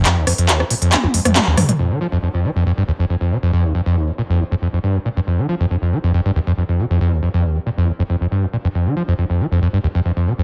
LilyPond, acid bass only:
\new Staff \with { instrumentName = "Acid bass" } { \clef bass \time 4/4 \key ees \mixolydian \tempo 4 = 138 f,16 ees,16 f,16 f,16 ees,16 f,16 bes,16 f,16 ees,16 f,16 f,16 f,16 aes,16 ees,16 g,16 bes,16 | f,16 ees16 f16 f,16 f,16 f,16 f16 f,16 f,16 g,16 ees,16 f,16 f,16 f,16 c16 f,16 | f,16 ees,16 f,16 f,16 ees,16 f,16 bes,16 f,16 ees,16 f,16 f,16 f,16 g,16 f,16 bes,16 f,16 | f,16 ees16 f16 f,16 f,16 f,16 f16 f,16 f,16 g,16 ees,16 f,16 f,16 f,16 c16 f,16 |
f,16 ees,16 f,16 f,16 ees,16 f,16 bes,16 f,16 ees,16 f,16 f,16 f,16 g,16 f,16 bes,16 f,16 | f,16 ees16 f16 f,16 f,16 f,16 f16 f,16 f,16 g,16 ees,16 f,16 f,16 f,16 c16 f,16 | }